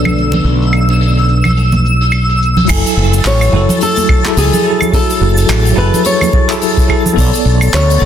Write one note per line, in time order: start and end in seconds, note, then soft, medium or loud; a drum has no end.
0.00 0.42 B1 medium
0.00 2.65 D3 medium
0.00 2.65 F#3 medium
0.00 2.65 A3 medium
0.00 2.64 B3 medium
0.00 2.65 B3 medium
0.00 2.64 D4 medium
0.00 2.65 A4 medium
0.00 2.66 C#5 medium
0.00 2.68 D5 medium
0.00 2.70 E6 medium
0.05 open hi-hat soft
0.05 low conga medium
0.05 claves medium
0.05 shaker soft
0.18 shaker medium
0.32 open hi-hat medium
0.32 muted conga medium
0.32 low conga medium
0.32 shaker soft
0.44 2.66 B1 medium
0.44 open hi-hat medium
0.44 shaker medium
0.62 open hi-hat soft
0.62 shaker soft
0.73 claves medium
0.73 shaker medium
0.89 open hi-hat soft
0.89 muted conga soft
0.89 shaker soft
1.01 open hi-hat medium
1.01 shaker medium
1.17 open hi-hat soft
1.17 shaker soft
1.29 shaker medium
1.44 open hi-hat soft
1.44 low conga medium
1.44 claves medium
1.44 shaker soft
1.57 open hi-hat medium
1.57 shaker medium
1.72 high conga medium
1.72 low conga medium
1.72 shaker soft
1.85 shaker medium
2.01 open hi-hat soft
2.01 shaker soft
2.12 open hi-hat medium
2.12 claves medium
2.12 shaker medium
2.29 open hi-hat soft
2.29 shaker soft
2.42 shaker medium
2.57 open hi-hat medium
2.57 low conga medium
2.57 shaker soft
2.65 2.81 F#1 medium
2.65 3.47 F#3 medium
2.65 3.49 E4 medium
2.65 kick loud
2.65 open hi-hat medium
2.65 crash loud
2.69 3.52 A4 medium
2.69 3.51 G#5 medium
2.69 8.05 A6 medium
2.69 claves medium
2.69 shaker medium
2.86 open hi-hat medium
2.86 shaker medium
2.97 3.20 F#1 medium
3.13 open hi-hat soft
3.13 muted conga soft
3.13 shaker medium
3.25 3.48 A1 medium
3.25 3.82 C#5 loud
3.25 clap medium
3.25 open hi-hat medium
3.25 shaker medium
3.41 open hi-hat medium
3.41 claves medium
3.41 shaker medium
3.49 3.65 F#1 loud
3.49 4.20 F#3 medium
3.49 4.21 E4 medium
3.54 4.22 F#4 medium
3.54 4.23 A4 medium
3.69 open hi-hat medium
3.69 low conga loud
3.69 shaker medium
3.81 4.38 A4 medium
3.81 open hi-hat medium
3.81 shaker medium
3.96 open hi-hat medium
3.96 high conga medium
3.96 shaker medium
4.09 kick loud
4.09 claves medium
4.23 4.61 F#3 medium
4.23 4.62 E4 medium
4.23 4.62 G#4 medium
4.23 4.63 A4 loud
4.23 clap medium
4.23 open hi-hat soft
4.23 muted conga medium
4.23 shaker medium
4.37 4.49 C#2 medium
4.37 4.94 G#4 medium
4.37 open hi-hat medium
4.37 shaker medium
4.53 open hi-hat medium
4.53 low conga medium
4.53 shaker medium
4.63 4.88 F#3 medium
4.63 4.90 E4 medium
4.63 4.90 G#4 medium
4.63 4.91 A4 medium
4.81 low conga medium
4.81 claves medium
4.81 shaker medium
4.90 5.72 F#3 medium
4.90 5.74 E4 medium
4.90 kick loud
4.90 open hi-hat medium
4.94 5.75 F#4 medium
4.94 5.77 A4 medium
4.94 5.76 A4 medium
4.94 shaker medium
5.10 open hi-hat medium
5.10 shaker soft
5.21 5.44 F#1 medium
5.37 open hi-hat medium
5.37 shaker medium
5.49 5.72 A1 medium
5.49 clap medium
5.49 claves medium
5.49 shaker medium
5.65 open hi-hat medium
5.65 shaker soft
5.73 5.90 F#1 loud
5.73 6.44 F#3 medium
5.73 6.45 E4 medium
5.78 6.47 G#4 medium
5.78 6.48 A4 loud
5.78 6.06 B4 medium
5.94 open hi-hat soft
5.94 muted conga soft
5.94 low conga medium
5.94 shaker medium
6.04 6.58 C#5 medium
6.04 open hi-hat medium
6.04 muted conga soft
6.04 shaker medium
6.21 open hi-hat medium
6.21 high conga medium
6.21 low conga medium
6.21 claves medium
6.21 shaker medium
6.33 kick loud
6.33 muted conga medium
6.48 6.86 F#3 medium
6.48 6.86 E4 medium
6.48 6.87 G#4 medium
6.48 6.87 A4 loud
6.48 clap medium
6.48 open hi-hat soft
6.48 shaker medium
6.62 open hi-hat medium
6.62 shaker medium
6.77 kick loud
6.77 open hi-hat medium
6.77 shaker medium
6.87 7.13 F#3 medium
6.87 7.14 E4 medium
6.87 7.14 G#4 medium
6.87 7.15 A4 medium
6.87 kick medium
6.87 claves medium
7.06 low conga medium
7.06 shaker medium
7.13 7.30 B1 loud
7.13 7.96 B3 medium
7.13 7.98 A4 medium
7.13 kick loud
7.18 7.99 C#5 medium
7.18 8.00 D5 medium
7.18 open hi-hat medium
7.18 shaker medium
7.33 open hi-hat medium
7.33 shaker medium
7.45 7.68 B1 medium
7.61 open hi-hat soft
7.61 muted conga soft
7.61 claves medium
7.61 shaker medium
7.73 7.96 D2 medium
7.73 8.05 C#5 loud
7.73 clap medium
7.73 open hi-hat medium
7.73 shaker medium
7.90 open hi-hat medium
7.90 shaker medium
7.97 8.05 B1 loud
7.97 8.05 B3 medium
7.97 8.05 A4 medium
8.02 8.05 C#5 medium